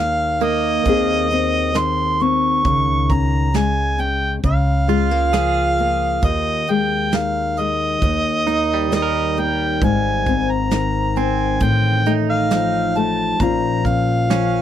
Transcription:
Already playing: D#2 D#3 A#3 F5
0.41 A#3 D#5, closed hi-hat
0.85 D#2 D#3 C4 D#4, kick, closed hi-hat
0.89 G#4
1.31 C4, closed hi-hat
1.74 D#3 C6, snare, closed hi-hat
2.20 C4 C#6, closed hi-hat
2.65 C#2 C#3, kick, closed hi-hat
3.10 C#4 A#5, kick, closed hi-hat
3.54 G#3 G#5, snare, closed hi-hat
3.98 C#4 G5, closed hi-hat
4.43 C#2 C#3 F5, kick, closed hi-hat
4.88 G#3 F4, closed hi-hat
5.11 A#3
5.33 F3 G#4, snare, closed hi-hat
5.78 A#3, closed hi-hat
6.22 D#2 D#5, kick, closed hi-hat
6.67 G#3 G5, closed hi-hat
7.12 D#3 F5, snare, closed hi-hat
7.57 G#3 D#5, closed hi-hat
8.02 D#2, kick, closed hi-hat
8.47 A#3 D#4, closed hi-hat
8.74 G3
8.91 D#3 D#5, snare, closed hi-hat
9.02 A#4
9.37 A#3 G5, closed hi-hat
9.82 G#1 G#2 G#5, kick, closed hi-hat
10.27 C4, kick, closed hi-hat
10.52 A#5
10.71 D#3, snare, closed hi-hat
11.16 C4 G#5, closed hi-hat
11.60 A1 A2 G5, kick, closed hi-hat
12.06 A3 D#4, closed hi-hat
12.30 F5
12.50 F3, snare, closed hi-hat
12.95 A3 A5, closed hi-hat
13.40 A#1 A#2 F3 C#4 F4 A#5, kick, closed hi-hat
13.85 C#4 F5, kick, closed hi-hat
14.30 F3 C#4, snare, closed hi-hat

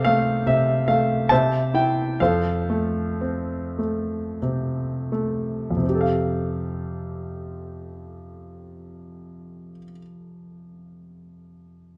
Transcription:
Already playing: C3 A4 C5 F5
0.05 A3 F5
0.46 C3 E5
0.88 A3 F5
1.29 C3 C5 E5 A5
1.74 E4 G5
2.20 F2 A4 C5 F5
2.70 A3
3.21 C4
3.79 A3
4.42 C3
5.12 A3
5.71 F2
5.77 C3
5.83 C4
5.89 G4
5.95 A4
6.01 F5

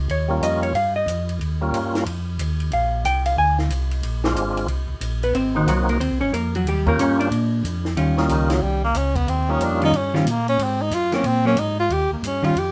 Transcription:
0.08 D#2 C#5, ride
0.28 G3 A#3 C#4 F4
0.41 F2 D#5, hi-hat pedal, ride
0.63 C#5, ride
0.73 G2 F5, ride
0.96 D#5
1.06 F2, hi-hat pedal, ride
1.29 ride
1.39 D#2, ride
1.61 G3 A#3 C#4 F4
1.72 G2, hi-hat pedal, ride
1.95 snare, ride
2.06 F2, ride
2.39 D#2, hi-hat pedal, ride
2.60 ride
2.72 A#1 F5, ride
3.05 C2 G5, hi-hat pedal, ride
3.25 F5, ride
3.37 D2 G#5
3.58 F5, snare
3.70 C2, hi-hat pedal, ride
3.91 ride
4.03 A#1, ride
4.24 G#3 C4 D4 F4, snare
4.35 G#1, hi-hat pedal, ride
4.57 ride
4.67 C2, ride
4.88 C2
5.01 A#1, hi-hat pedal, ride
5.23 B3 B4, ride
5.34 G#1 C4 C5, ride
5.55 D#3 A#3 C4 D#4 F#4
5.67 C2 F#3 F#4, hi-hat pedal, ride
5.89 A#3 A#4, ride
5.99 D#2 C4 C5, ride
6.11 C2
6.21 G#1 C#4 C#5
6.32 F2 A#3 A#4, hi-hat pedal, ride
6.55 F#3 F#4, ride
6.65 D#2 G3 G4, ride
6.86 A#3 C#4 F4 G4 A#4, kick
6.98 G2 C#4 C#5, hi-hat pedal, ride
7.20 D4 D5, ride
7.31 A#2, ride
7.64 F2, hi-hat pedal, ride
7.85 snare
7.97 D#2 D#3 G3 C#4 F4, ride
8.17 G3 A#3 C#4 D#4 F4, snare
8.29 C#2 D#3, hi-hat pedal, ride
8.49 F#3, snare, ride
8.62 C2 G3
8.84 A#3
8.94 C#2 C#4, hi-hat pedal, ride
9.16 B3, kick, ride
9.27 D#2 C4, ride
9.49 G3 A#3 C#4 D#4 F4
9.60 F2, hi-hat pedal, ride
9.64 D4
9.81 D#3 G3 C#4 D#4 F4, ride
9.92 G2, ride
9.97 C#4
10.14 D#3 F3 G3 C#4 F4, snare
10.25 A#2, hi-hat pedal, ride
10.30 A#3
10.48 C#4, ride
10.59 G#2, ride
10.63 C4
10.82 D#4
10.91 F#2 F4, hi-hat pedal, ride
11.12 F#3 A#3 C4 C#4, snare, ride
11.24 A#2 C4, ride
11.45 F#3 A#3 C4 C#4
11.57 G#2 D#4, hi-hat pedal, ride
11.79 F4
11.89 D#2 G4, ride
12.10 D#2 A#3
12.22 G2, hi-hat pedal, ride
12.27 C#4
12.42 G2 D#3 G3 C#4 F4, ride
12.55 F2 G4, ride

